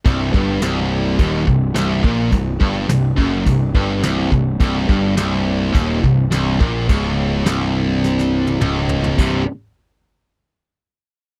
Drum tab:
CC |x---x---x---x---|x---x---x---x---|x---x---x---x---|x---x-----------|
SD |----o-------o---|----o-------o---|----o-------o---|----o---oo------|
T1 |----------------|----------------|----------------|-----------o----|
T2 |----------------|----------------|----------------|------------o---|
FT |----------------|----------------|----------------|--------------oo|
BD |o-o-----o-o---o-|o-o---o-o-o---o-|o-o-----o-o---o-|o---------------|

CC |x---------------|
SD |----------------|
T1 |----------------|
T2 |----------------|
FT |----------------|
BD |o---------------|